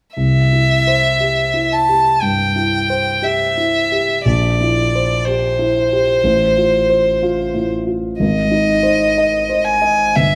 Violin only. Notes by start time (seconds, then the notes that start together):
0.16 E5
1.72 A5
2.21 G5
3.23 E5
4.25 D5
5.25 C5
8.21 D#5
9.65 G#5
10.16 E5